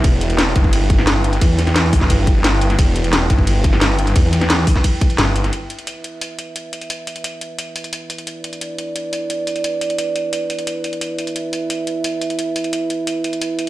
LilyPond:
<<
  \new Staff \with { instrumentName = "Analog synth pad" } { \time 4/4 \key e \minor \tempo 4 = 175 << { g''1~ | g''1~ | g''1~ | g''1 |
e''1~ | e''1 | d''1~ | d''1 |
e''1~ | e''1 | } \\ { <e' b'>1~ | <e' b'>1~ | <e' b'>1~ | <e' b'>1 |
<e' b'>1~ | <e' b'>1~ | <e' b'>1~ | <e' b'>1~ |
<e' b'>1~ | <e' b'>1 | } >> }
  \new Staff \with { instrumentName = "Detuned saw bass" } { \clef bass \time 4/4 \key e \minor e,,4. g,,2~ g,,8 | e,4. g,,2~ g,,8 | e,,4. g,,2~ g,,8 | e,4. r4. g,,4 |
r1 | r1 | r1 | r1 |
r1 | r1 | }
  \new DrumStaff \with { instrumentName = "Drums" } \drummode { \time 4/4 <hh bd cymr>8 hh16 hh16 <hh cymr sn>8 <hh bd>16 bd16 <hh cymr>8 <hh bd>16 sn16 <hh cymr sn>8 hh16 hh16 | <hh bd cymr>8 <hh sn>16 <hh sn>16 <hh cymr sn>8 <hho bd>16 <bd sn>16 <hh bd cymr>8 <hh bd>8 <hh cymr sn>8 hh16 <hh sn>16 | <hh bd cymr>8 hh16 hh16 <hh cymr sn>8 <hh bd>16 bd16 <hh cymr>8 <hh bd>16 sn16 <hh cymr sn>8 hh16 hh16 | <hh bd cymr>8 <hh sn>16 <hh sn>16 <hh cymr sn>8 <hho bd>16 <bd sn>16 <hh bd cymr>8 <hh bd>16 hh16 <hh cymr sn>8 hh16 <hh sn>16 |
hh8 hh16 hh16 hh8 hh8 hh8 hh8 hh8 hh16 hh16 | hh8 hh16 hh16 hh8 hh8 hh8 hh16 hh16 hh8 hh16 hh16 | hh8 hh16 hh16 hh8 hh8 hh8 hh8 hh8 hh16 hh16 | hh8 hh16 hh16 hh8 hh8 hh8 hh16 hh16 hh8 hh16 hh16 |
hh8 hh16 hh16 hh8 hh8 hh8 hh8 hh8 hh16 hh16 | hh8 hh16 hh16 hh8 hh8 hh8 hh16 hh16 hh8 hh8 | }
>>